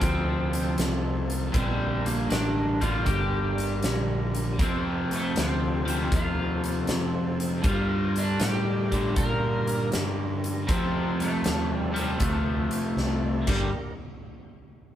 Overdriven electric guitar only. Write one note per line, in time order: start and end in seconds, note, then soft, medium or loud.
0.00 1.52 F2 medium
0.00 1.53 C3 medium
0.00 1.53 F3 medium
1.52 2.78 G2 medium
1.52 2.79 D3 medium
1.56 2.80 G3 medium
2.81 4.59 G2 medium
2.81 4.58 D3 medium
2.81 4.57 G3 medium
4.60 5.84 F2 medium
4.60 5.85 C3 medium
4.60 5.84 F3 loud
5.85 7.63 F2 medium
5.85 7.63 C3 medium
5.85 7.62 F3 medium
7.63 8.88 G2 medium
7.63 8.89 D3 medium
7.63 8.90 G3 loud
8.92 10.67 G2 medium
8.92 10.68 D3 medium
8.92 10.67 G3 medium
10.67 11.93 F2 medium
10.67 11.94 C3 medium
10.67 11.93 F3 loud
11.94 13.47 F2 medium
11.94 13.48 C3 medium
11.94 13.47 F3 medium
13.47 13.67 G2 medium
13.47 13.68 D3 medium
13.47 13.69 G3 loud